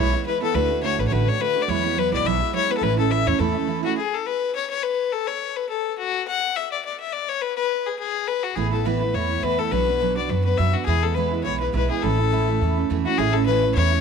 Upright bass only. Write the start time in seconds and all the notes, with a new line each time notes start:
Already playing: B1
0.54 D2
0.98 A1
1.11 A1
1.68 E2
2.12 B1
2.24 B1
2.81 A1
3.26 E2
3.39 E2
8.56 A1
9.14 E2
9.43 E2
9.71 B1
10.29 F#2
10.59 F#2
10.87 E2
11.45 B1
11.74 B1
12.03 A1
12.61 E2
12.90 E2
13.18 A1
13.76 E2